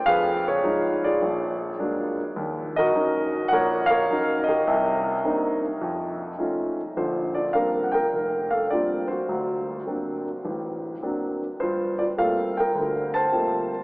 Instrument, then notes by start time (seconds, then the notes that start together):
grand piano
0.06 F2 G#4 B4 F5
0.48 G#4 C#5
0.64 F3 G#3 D#4
1.04 F4 G#4 D5
1.22 A#1
1.79 F#3 G#3 A#3 D4
2.36 D#2
2.76 F#4 A#4 D#5
2.94 F#3 C#4 D#4
3.48 A#1 F#5
3.53 A#4 C#5
3.86 F5
3.90 A#4 C#5
4.10 F#3 C#4 D#4
4.44 D#5
4.48 G4 A#4
4.67 C2 C3
5.24 A#3 C4 D4 D#4
5.81 F2
6.39 A3 C#4 D#4 F4
6.97 A#1 D3 F4 C5
7.35 F4 D5
7.53 G3 A#3 C4 D4 A#4 F5
7.84 F#5
7.92 A#4 G5
8.13 F1
8.51 A4 F5
8.70 G3 A#3 C4 D4 F4 D5
9.08 F#4 C5
9.29 D2 F#3
9.86 F#3 A#3 C4 D4
10.45 A1
11.03 F#3 A#3 C4 D4
11.60 G2 F4 C5
11.99 F4 D5
12.17 G3 A3 A#3 C4 F4 A4 F5
12.57 A#4 G5
12.75 D2 D3
13.14 C5 A5
13.32 G3 A3 A#3 C4 F4